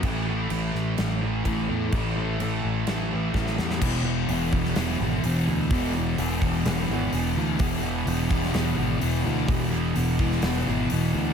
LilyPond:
<<
  \new Staff \with { instrumentName = "Distorted electric guitar" } { \clef bass \time 4/4 \key a \major \tempo 4 = 127 <a, e a>8 <e a>8 <a, e a>4. <e a>8 <a, e a>8 <e a>8 | <a, e a>8 <e a>8 <a, e a>4. <e a>8 <a, e a>8 <e a>8 | <e, b, e>8 <b, e>8 <e, b, e>8 <e, b, e>8 <e, b, e>8 <e, b, e>8 <e, b, e>8 <b, e>8 | <e, b, e>8 <b, e>8 <e, b, e>8 <e, b, e>8 <e, b, e>8 <e, b, e>8 <e, b, e>8 <b, e>8 |
<e, b, e>8 <b, e>8 <e, b, e>8 <e, b, e>8 <e, b, e>8 <e, b, e>8 <e, b, e>8 <b, e>8 | <e, b, e>8 <b, e>8 <e, b, e>8 <e, b, e>8 <e, b, e>8 <e, b, e>8 <e, b, e>8 <b, e>8 | }
  \new Staff \with { instrumentName = "Fingered electric bass" } { \clef bass \time 4/4 \key a \major a,,4 a,,8 a,,8 a,,4 a,,8 e,8 | a,,4 a,,8 a,,8 a,,4 a,,8 e,8 | e,,4 e,,4 e,,8 gis,,8 e,,8 d,8 | e,,4 e,,4 e,,8 gis,,8 e,,8 d,8 |
e,,4 e,,4 e,,8 gis,,8 e,,8 d,8 | e,,4 e,,4 e,,8 gis,,8 e,,8 d,8 | }
  \new DrumStaff \with { instrumentName = "Drums" } \drummode { \time 4/4 <cymc bd>4 cymc8 sn8 <cymc sn>4 <cymc bd>4 | <cymc bd>4 cymc4 <cymc sn>4 <bd sn>16 sn16 sn16 sn16 | <cymc bd>4 hho8 bd16 sn16 <hho sn>4 hho4 | <hho bd>4 hho8 bd8 <hho sn>4 hho4 |
<hho bd>4 hho8 bd16 sn16 <hho sn>4 hho4 | <hho bd>4 hho8 bd16 sn16 <hho sn>4 hho4 | }
>>